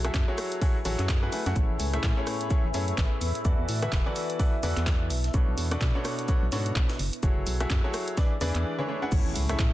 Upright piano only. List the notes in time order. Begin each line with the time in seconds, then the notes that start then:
0.05 F#3 E4 F#4 G#4 A4 E5
0.28 F#3 E4 F#4 G#4 A4 C#5
0.61 F#3 E4 F#4 G#4 A4 C#5
0.85 F#3 E4 F#4 G#4 A4 C#5
1.23 F#3 E4 F#4 G#4 A4 B4
1.32 A3 E4 F#4 G#4 A4 B4
1.46 A3 E4 F#4 G#4 A4 F#5
1.56 A2 C#4 E4 G#4 A4 C#5
1.94 A2 C#4 E4 G#4 A4 E5
2.17 A2 C#4 E4 G#4 A4 C#5
2.50 A2 C#4 E4 G#4 A4 C#5
2.74 A2 C#4 E4 G#4 A4 C#5
3.45 E3 E4 F#4 A4 B4 D5
3.82 E3 E4 F#4 A4 B4 E5
4.06 E3 E4 F#4 A4 B4 D5
4.40 E3 E4 F#4 A4 B4 D5
4.63 E3 E4 F#4 A4 B4 D5
5.34 B2 D4 F#4 A4 B4 C#5
5.71 B2 D4 F#4 A4 B4 D5
5.95 B2 D4 F#4 A4 B4 C#5
6.28 B2 D4 F#4 A4 B4 C#5
6.52 B2 D4 F#4 A4 B4 C#5
7.23 F#3 E4 F#4 G#4 A4 C#5
7.60 F#3 E4 F#4 G#4 A4 E5
7.84 F#3 E4 F#4 G#4 A4 C#5
8.17 E3 D4 E4 G#4 B4 D5
8.41 E3 D4 E4 G#4 B4 D5
8.79 E3 D4 E4 G#4 B4 C#5
8.88 D4 E4 G#4 B4 C#5
9.02 D4 E4 G#4 B4 F#5
9.12 A2 C#4 E4 G#4 A4 C#5
9.49 A2 C#4 E4 G#4 A4 E5